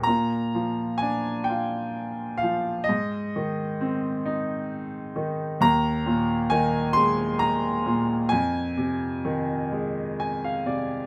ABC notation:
X:1
M:6/8
L:1/16
Q:3/8=44
K:Bbmix
V:1 name="Grand piano"
b4 a2 g4 f2 | e8 z4 | b4 a2 c'2 b4 | a8 a f d2 |]
V:2 name="Grand piano" clef=bass
B,,2 F,2 D2 F4 F,2 | A,,2 E,2 C2 E4 E,2 | E,,2 B,,2 E,2 A,4 B,,2 | F,,2 C,2 E,2 A,4 C,2 |]